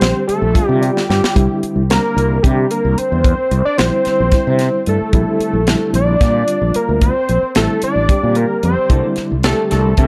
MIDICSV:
0, 0, Header, 1, 7, 480
1, 0, Start_track
1, 0, Tempo, 539084
1, 1206, Time_signature, 7, 3, 24, 8
1, 8966, End_track
2, 0, Start_track
2, 0, Title_t, "Analog synth lead"
2, 0, Program_c, 0, 81
2, 0, Note_on_c, 0, 72, 93
2, 205, Note_off_c, 0, 72, 0
2, 244, Note_on_c, 0, 69, 118
2, 600, Note_off_c, 0, 69, 0
2, 600, Note_on_c, 0, 67, 118
2, 722, Note_off_c, 0, 67, 0
2, 722, Note_on_c, 0, 67, 95
2, 964, Note_off_c, 0, 67, 0
2, 970, Note_on_c, 0, 67, 91
2, 1415, Note_off_c, 0, 67, 0
2, 1692, Note_on_c, 0, 70, 111
2, 2161, Note_on_c, 0, 67, 94
2, 2175, Note_off_c, 0, 70, 0
2, 2412, Note_on_c, 0, 70, 83
2, 2426, Note_off_c, 0, 67, 0
2, 2654, Note_on_c, 0, 72, 100
2, 2667, Note_off_c, 0, 70, 0
2, 3247, Note_off_c, 0, 72, 0
2, 3253, Note_on_c, 0, 74, 108
2, 3358, Note_off_c, 0, 74, 0
2, 3363, Note_on_c, 0, 72, 118
2, 4291, Note_off_c, 0, 72, 0
2, 4350, Note_on_c, 0, 69, 96
2, 5264, Note_off_c, 0, 69, 0
2, 5300, Note_on_c, 0, 74, 101
2, 6017, Note_on_c, 0, 70, 84
2, 6030, Note_off_c, 0, 74, 0
2, 6247, Note_off_c, 0, 70, 0
2, 6252, Note_on_c, 0, 72, 98
2, 6697, Note_off_c, 0, 72, 0
2, 6738, Note_on_c, 0, 69, 94
2, 6957, Note_off_c, 0, 69, 0
2, 6976, Note_on_c, 0, 74, 91
2, 7447, Note_on_c, 0, 70, 79
2, 7460, Note_off_c, 0, 74, 0
2, 7688, Note_off_c, 0, 70, 0
2, 7699, Note_on_c, 0, 72, 83
2, 8140, Note_off_c, 0, 72, 0
2, 8408, Note_on_c, 0, 69, 103
2, 8631, Note_off_c, 0, 69, 0
2, 8647, Note_on_c, 0, 69, 78
2, 8871, Note_off_c, 0, 69, 0
2, 8894, Note_on_c, 0, 70, 96
2, 8966, Note_off_c, 0, 70, 0
2, 8966, End_track
3, 0, Start_track
3, 0, Title_t, "Clean electric guitar"
3, 0, Program_c, 1, 27
3, 7918, Note_on_c, 1, 52, 59
3, 7921, Note_on_c, 1, 62, 73
3, 7923, Note_on_c, 1, 58, 67
3, 7924, Note_on_c, 1, 69, 75
3, 8067, Note_off_c, 1, 52, 0
3, 8069, Note_off_c, 1, 62, 0
3, 8070, Note_off_c, 1, 58, 0
3, 8070, Note_off_c, 1, 69, 0
3, 8405, Note_on_c, 1, 52, 43
3, 8409, Note_on_c, 1, 58, 42
3, 8409, Note_on_c, 1, 62, 44
3, 8418, Note_on_c, 1, 69, 52
3, 8551, Note_off_c, 1, 52, 0
3, 8553, Note_off_c, 1, 58, 0
3, 8553, Note_off_c, 1, 62, 0
3, 8557, Note_off_c, 1, 69, 0
3, 8642, Note_on_c, 1, 69, 43
3, 8646, Note_on_c, 1, 62, 41
3, 8651, Note_on_c, 1, 58, 33
3, 8789, Note_off_c, 1, 69, 0
3, 8791, Note_off_c, 1, 62, 0
3, 8793, Note_off_c, 1, 58, 0
3, 8886, Note_on_c, 1, 52, 64
3, 8890, Note_on_c, 1, 58, 64
3, 8891, Note_on_c, 1, 69, 72
3, 8892, Note_on_c, 1, 62, 64
3, 8966, Note_off_c, 1, 52, 0
3, 8966, Note_off_c, 1, 58, 0
3, 8966, Note_off_c, 1, 62, 0
3, 8966, Note_off_c, 1, 69, 0
3, 8966, End_track
4, 0, Start_track
4, 0, Title_t, "Reed electric piano"
4, 0, Program_c, 2, 4
4, 0, Note_on_c, 2, 50, 65
4, 0, Note_on_c, 2, 55, 55
4, 0, Note_on_c, 2, 60, 58
4, 0, Note_on_c, 2, 67, 68
4, 409, Note_off_c, 2, 50, 0
4, 409, Note_off_c, 2, 55, 0
4, 411, Note_off_c, 2, 60, 0
4, 411, Note_off_c, 2, 67, 0
4, 480, Note_on_c, 2, 55, 56
4, 482, Note_on_c, 2, 50, 72
4, 483, Note_on_c, 2, 60, 60
4, 488, Note_on_c, 2, 65, 79
4, 723, Note_on_c, 2, 74, 52
4, 948, Note_off_c, 2, 74, 0
4, 971, Note_on_c, 2, 79, 58
4, 1192, Note_off_c, 2, 79, 0
4, 1195, Note_off_c, 2, 55, 0
4, 1197, Note_off_c, 2, 50, 0
4, 1197, Note_off_c, 2, 60, 0
4, 1206, Note_on_c, 2, 55, 67
4, 1208, Note_off_c, 2, 65, 0
4, 1208, Note_on_c, 2, 50, 67
4, 1208, Note_on_c, 2, 60, 62
4, 1212, Note_on_c, 2, 64, 78
4, 1615, Note_off_c, 2, 55, 0
4, 1616, Note_off_c, 2, 50, 0
4, 1616, Note_off_c, 2, 60, 0
4, 1618, Note_off_c, 2, 64, 0
4, 1684, Note_on_c, 2, 50, 58
4, 1691, Note_on_c, 2, 55, 54
4, 1691, Note_on_c, 2, 60, 56
4, 1695, Note_on_c, 2, 62, 59
4, 2094, Note_off_c, 2, 50, 0
4, 2098, Note_off_c, 2, 55, 0
4, 2098, Note_off_c, 2, 60, 0
4, 2099, Note_off_c, 2, 62, 0
4, 2167, Note_on_c, 2, 50, 58
4, 2170, Note_on_c, 2, 55, 45
4, 2172, Note_on_c, 2, 60, 53
4, 2172, Note_on_c, 2, 62, 60
4, 2984, Note_off_c, 2, 50, 0
4, 2986, Note_off_c, 2, 55, 0
4, 2987, Note_off_c, 2, 60, 0
4, 2987, Note_off_c, 2, 62, 0
4, 3363, Note_on_c, 2, 50, 62
4, 3367, Note_on_c, 2, 55, 58
4, 3367, Note_on_c, 2, 64, 69
4, 3368, Note_on_c, 2, 60, 52
4, 3774, Note_off_c, 2, 50, 0
4, 3776, Note_off_c, 2, 55, 0
4, 3776, Note_off_c, 2, 64, 0
4, 3777, Note_off_c, 2, 60, 0
4, 3853, Note_on_c, 2, 55, 52
4, 3857, Note_on_c, 2, 50, 52
4, 3860, Note_on_c, 2, 60, 55
4, 3861, Note_on_c, 2, 64, 64
4, 4558, Note_off_c, 2, 50, 0
4, 4564, Note_off_c, 2, 60, 0
4, 4566, Note_off_c, 2, 55, 0
4, 4568, Note_on_c, 2, 50, 69
4, 4569, Note_off_c, 2, 64, 0
4, 4575, Note_on_c, 2, 60, 64
4, 4576, Note_on_c, 2, 55, 61
4, 4580, Note_on_c, 2, 64, 79
4, 4977, Note_off_c, 2, 50, 0
4, 4980, Note_off_c, 2, 60, 0
4, 4981, Note_off_c, 2, 55, 0
4, 4982, Note_off_c, 2, 64, 0
4, 5050, Note_on_c, 2, 50, 74
4, 5052, Note_on_c, 2, 55, 70
4, 5053, Note_on_c, 2, 60, 65
4, 5056, Note_on_c, 2, 64, 76
4, 5458, Note_off_c, 2, 50, 0
4, 5459, Note_off_c, 2, 55, 0
4, 5459, Note_off_c, 2, 60, 0
4, 5461, Note_off_c, 2, 64, 0
4, 5527, Note_on_c, 2, 60, 49
4, 5529, Note_on_c, 2, 50, 58
4, 5529, Note_on_c, 2, 55, 56
4, 5535, Note_on_c, 2, 65, 66
4, 6344, Note_off_c, 2, 60, 0
4, 6345, Note_off_c, 2, 50, 0
4, 6345, Note_off_c, 2, 55, 0
4, 6348, Note_off_c, 2, 65, 0
4, 6728, Note_on_c, 2, 50, 62
4, 6736, Note_on_c, 2, 55, 50
4, 6736, Note_on_c, 2, 60, 61
4, 6739, Note_on_c, 2, 64, 69
4, 7137, Note_off_c, 2, 50, 0
4, 7140, Note_off_c, 2, 55, 0
4, 7141, Note_off_c, 2, 60, 0
4, 7142, Note_off_c, 2, 64, 0
4, 7208, Note_on_c, 2, 50, 58
4, 7209, Note_on_c, 2, 60, 57
4, 7210, Note_on_c, 2, 55, 50
4, 7211, Note_on_c, 2, 67, 64
4, 7915, Note_off_c, 2, 50, 0
4, 7918, Note_off_c, 2, 55, 0
4, 7919, Note_off_c, 2, 60, 0
4, 7926, Note_on_c, 2, 50, 72
4, 7929, Note_on_c, 2, 55, 58
4, 7930, Note_off_c, 2, 67, 0
4, 7930, Note_on_c, 2, 60, 56
4, 7931, Note_on_c, 2, 64, 74
4, 8335, Note_off_c, 2, 50, 0
4, 8337, Note_off_c, 2, 55, 0
4, 8337, Note_off_c, 2, 60, 0
4, 8338, Note_off_c, 2, 64, 0
4, 8403, Note_on_c, 2, 55, 56
4, 8405, Note_on_c, 2, 50, 59
4, 8411, Note_on_c, 2, 60, 53
4, 8412, Note_on_c, 2, 67, 70
4, 8814, Note_off_c, 2, 55, 0
4, 8815, Note_off_c, 2, 50, 0
4, 8818, Note_off_c, 2, 60, 0
4, 8818, Note_off_c, 2, 67, 0
4, 8888, Note_on_c, 2, 50, 59
4, 8891, Note_on_c, 2, 55, 55
4, 8892, Note_on_c, 2, 60, 53
4, 8896, Note_on_c, 2, 62, 62
4, 8966, Note_off_c, 2, 50, 0
4, 8966, Note_off_c, 2, 55, 0
4, 8966, Note_off_c, 2, 60, 0
4, 8966, Note_off_c, 2, 62, 0
4, 8966, End_track
5, 0, Start_track
5, 0, Title_t, "Fretless electric bass"
5, 0, Program_c, 3, 35
5, 15, Note_on_c, 3, 34, 81
5, 105, Note_off_c, 3, 34, 0
5, 373, Note_on_c, 3, 34, 78
5, 463, Note_off_c, 3, 34, 0
5, 613, Note_on_c, 3, 48, 92
5, 797, Note_off_c, 3, 48, 0
5, 976, Note_on_c, 3, 43, 70
5, 1066, Note_off_c, 3, 43, 0
5, 1215, Note_on_c, 3, 36, 84
5, 1305, Note_off_c, 3, 36, 0
5, 1564, Note_on_c, 3, 36, 60
5, 1752, Note_off_c, 3, 36, 0
5, 1927, Note_on_c, 3, 36, 85
5, 2114, Note_off_c, 3, 36, 0
5, 2178, Note_on_c, 3, 48, 86
5, 2360, Note_off_c, 3, 48, 0
5, 2535, Note_on_c, 3, 36, 78
5, 2626, Note_off_c, 3, 36, 0
5, 2777, Note_on_c, 3, 40, 77
5, 2960, Note_off_c, 3, 40, 0
5, 3128, Note_on_c, 3, 36, 85
5, 3222, Note_off_c, 3, 36, 0
5, 3377, Note_on_c, 3, 34, 79
5, 3467, Note_off_c, 3, 34, 0
5, 3742, Note_on_c, 3, 34, 76
5, 3830, Note_off_c, 3, 34, 0
5, 3981, Note_on_c, 3, 48, 82
5, 4163, Note_off_c, 3, 48, 0
5, 4338, Note_on_c, 3, 43, 69
5, 4428, Note_off_c, 3, 43, 0
5, 4569, Note_on_c, 3, 34, 91
5, 4662, Note_off_c, 3, 34, 0
5, 4926, Note_on_c, 3, 34, 64
5, 5113, Note_off_c, 3, 34, 0
5, 5285, Note_on_c, 3, 34, 84
5, 5473, Note_off_c, 3, 34, 0
5, 5530, Note_on_c, 3, 46, 77
5, 5716, Note_off_c, 3, 46, 0
5, 5891, Note_on_c, 3, 34, 69
5, 5983, Note_off_c, 3, 34, 0
5, 6133, Note_on_c, 3, 38, 73
5, 6318, Note_off_c, 3, 38, 0
5, 6493, Note_on_c, 3, 34, 77
5, 6585, Note_off_c, 3, 34, 0
5, 6735, Note_on_c, 3, 33, 81
5, 6826, Note_off_c, 3, 33, 0
5, 7084, Note_on_c, 3, 33, 67
5, 7179, Note_off_c, 3, 33, 0
5, 7332, Note_on_c, 3, 46, 81
5, 7517, Note_off_c, 3, 46, 0
5, 7687, Note_on_c, 3, 41, 69
5, 7781, Note_off_c, 3, 41, 0
5, 7922, Note_on_c, 3, 36, 89
5, 8018, Note_off_c, 3, 36, 0
5, 8295, Note_on_c, 3, 36, 67
5, 8479, Note_off_c, 3, 36, 0
5, 8654, Note_on_c, 3, 36, 81
5, 8838, Note_off_c, 3, 36, 0
5, 8888, Note_on_c, 3, 48, 87
5, 8966, Note_off_c, 3, 48, 0
5, 8966, End_track
6, 0, Start_track
6, 0, Title_t, "Muted fretless electric bass strokes"
6, 258, Note_on_c, 9, 29, 31
6, 347, Note_off_c, 9, 29, 0
6, 1098, Note_on_c, 9, 29, 34
6, 1187, Note_off_c, 9, 29, 0
6, 1452, Note_on_c, 9, 29, 29
6, 1541, Note_off_c, 9, 29, 0
6, 3621, Note_on_c, 9, 29, 34
6, 3710, Note_off_c, 9, 29, 0
6, 4463, Note_on_c, 9, 29, 31
6, 4552, Note_off_c, 9, 29, 0
6, 4806, Note_on_c, 9, 29, 30
6, 4895, Note_off_c, 9, 29, 0
6, 6972, Note_on_c, 9, 29, 31
6, 7061, Note_off_c, 9, 29, 0
6, 7811, Note_on_c, 9, 29, 28
6, 7901, Note_off_c, 9, 29, 0
6, 8171, Note_on_c, 9, 29, 31
6, 8260, Note_off_c, 9, 29, 0
6, 8966, End_track
7, 0, Start_track
7, 0, Title_t, "Drums"
7, 11, Note_on_c, 9, 42, 58
7, 19, Note_on_c, 9, 38, 90
7, 101, Note_off_c, 9, 42, 0
7, 108, Note_off_c, 9, 38, 0
7, 257, Note_on_c, 9, 42, 47
7, 346, Note_off_c, 9, 42, 0
7, 490, Note_on_c, 9, 36, 96
7, 494, Note_on_c, 9, 42, 70
7, 579, Note_off_c, 9, 36, 0
7, 583, Note_off_c, 9, 42, 0
7, 735, Note_on_c, 9, 42, 52
7, 824, Note_off_c, 9, 42, 0
7, 865, Note_on_c, 9, 38, 52
7, 954, Note_off_c, 9, 38, 0
7, 983, Note_on_c, 9, 38, 64
7, 1072, Note_off_c, 9, 38, 0
7, 1105, Note_on_c, 9, 38, 85
7, 1194, Note_off_c, 9, 38, 0
7, 1212, Note_on_c, 9, 36, 89
7, 1214, Note_on_c, 9, 42, 69
7, 1301, Note_off_c, 9, 36, 0
7, 1303, Note_off_c, 9, 42, 0
7, 1452, Note_on_c, 9, 42, 48
7, 1541, Note_off_c, 9, 42, 0
7, 1693, Note_on_c, 9, 42, 72
7, 1700, Note_on_c, 9, 38, 87
7, 1782, Note_off_c, 9, 42, 0
7, 1789, Note_off_c, 9, 38, 0
7, 1940, Note_on_c, 9, 42, 52
7, 2029, Note_off_c, 9, 42, 0
7, 2172, Note_on_c, 9, 36, 94
7, 2176, Note_on_c, 9, 42, 68
7, 2261, Note_off_c, 9, 36, 0
7, 2265, Note_off_c, 9, 42, 0
7, 2410, Note_on_c, 9, 42, 56
7, 2499, Note_off_c, 9, 42, 0
7, 2652, Note_on_c, 9, 42, 55
7, 2741, Note_off_c, 9, 42, 0
7, 2889, Note_on_c, 9, 36, 99
7, 2891, Note_on_c, 9, 42, 63
7, 2978, Note_off_c, 9, 36, 0
7, 2980, Note_off_c, 9, 42, 0
7, 3129, Note_on_c, 9, 42, 45
7, 3218, Note_off_c, 9, 42, 0
7, 3369, Note_on_c, 9, 42, 63
7, 3376, Note_on_c, 9, 38, 94
7, 3458, Note_off_c, 9, 42, 0
7, 3465, Note_off_c, 9, 38, 0
7, 3606, Note_on_c, 9, 42, 48
7, 3613, Note_on_c, 9, 38, 29
7, 3695, Note_off_c, 9, 42, 0
7, 3702, Note_off_c, 9, 38, 0
7, 3843, Note_on_c, 9, 42, 72
7, 3846, Note_on_c, 9, 36, 90
7, 3850, Note_on_c, 9, 38, 31
7, 3932, Note_off_c, 9, 42, 0
7, 3935, Note_off_c, 9, 36, 0
7, 3939, Note_off_c, 9, 38, 0
7, 4086, Note_on_c, 9, 42, 53
7, 4093, Note_on_c, 9, 38, 31
7, 4175, Note_off_c, 9, 42, 0
7, 4182, Note_off_c, 9, 38, 0
7, 4331, Note_on_c, 9, 42, 56
7, 4420, Note_off_c, 9, 42, 0
7, 4568, Note_on_c, 9, 42, 69
7, 4569, Note_on_c, 9, 36, 92
7, 4657, Note_off_c, 9, 42, 0
7, 4658, Note_off_c, 9, 36, 0
7, 4813, Note_on_c, 9, 42, 51
7, 4902, Note_off_c, 9, 42, 0
7, 5048, Note_on_c, 9, 42, 69
7, 5055, Note_on_c, 9, 38, 83
7, 5137, Note_off_c, 9, 42, 0
7, 5144, Note_off_c, 9, 38, 0
7, 5289, Note_on_c, 9, 42, 57
7, 5378, Note_off_c, 9, 42, 0
7, 5527, Note_on_c, 9, 42, 82
7, 5528, Note_on_c, 9, 36, 101
7, 5534, Note_on_c, 9, 38, 30
7, 5616, Note_off_c, 9, 42, 0
7, 5617, Note_off_c, 9, 36, 0
7, 5623, Note_off_c, 9, 38, 0
7, 5767, Note_on_c, 9, 42, 59
7, 5857, Note_off_c, 9, 42, 0
7, 6005, Note_on_c, 9, 42, 62
7, 6094, Note_off_c, 9, 42, 0
7, 6246, Note_on_c, 9, 42, 71
7, 6247, Note_on_c, 9, 36, 80
7, 6335, Note_off_c, 9, 42, 0
7, 6336, Note_off_c, 9, 36, 0
7, 6489, Note_on_c, 9, 42, 48
7, 6578, Note_off_c, 9, 42, 0
7, 6723, Note_on_c, 9, 42, 76
7, 6730, Note_on_c, 9, 38, 85
7, 6812, Note_off_c, 9, 42, 0
7, 6819, Note_off_c, 9, 38, 0
7, 6960, Note_on_c, 9, 42, 53
7, 7049, Note_off_c, 9, 42, 0
7, 7203, Note_on_c, 9, 36, 97
7, 7204, Note_on_c, 9, 42, 73
7, 7292, Note_off_c, 9, 36, 0
7, 7293, Note_off_c, 9, 42, 0
7, 7437, Note_on_c, 9, 42, 56
7, 7526, Note_off_c, 9, 42, 0
7, 7684, Note_on_c, 9, 42, 56
7, 7773, Note_off_c, 9, 42, 0
7, 7923, Note_on_c, 9, 36, 93
7, 7924, Note_on_c, 9, 42, 68
7, 8012, Note_off_c, 9, 36, 0
7, 8013, Note_off_c, 9, 42, 0
7, 8154, Note_on_c, 9, 42, 44
7, 8161, Note_on_c, 9, 38, 27
7, 8243, Note_off_c, 9, 42, 0
7, 8250, Note_off_c, 9, 38, 0
7, 8400, Note_on_c, 9, 42, 64
7, 8407, Note_on_c, 9, 38, 100
7, 8489, Note_off_c, 9, 42, 0
7, 8496, Note_off_c, 9, 38, 0
7, 8646, Note_on_c, 9, 42, 50
7, 8653, Note_on_c, 9, 38, 29
7, 8735, Note_off_c, 9, 42, 0
7, 8742, Note_off_c, 9, 38, 0
7, 8879, Note_on_c, 9, 42, 74
7, 8884, Note_on_c, 9, 36, 94
7, 8966, Note_off_c, 9, 36, 0
7, 8966, Note_off_c, 9, 42, 0
7, 8966, End_track
0, 0, End_of_file